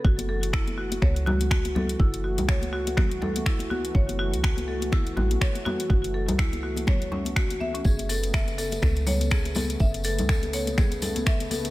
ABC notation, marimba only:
X:1
M:4/4
L:1/16
Q:"Swing 16ths" 1/4=123
K:F#m
V:1 name="Marimba"
F z A z E z F z c z F z F z A z | E z F z c z F z F z A z E z F z | c z F z F z A z E z F z c z F z | F z A z E z F z c z C z F z e C |
G z A z e z A z A z c z G z A z | e z A z A z c z G z A z e z A z |]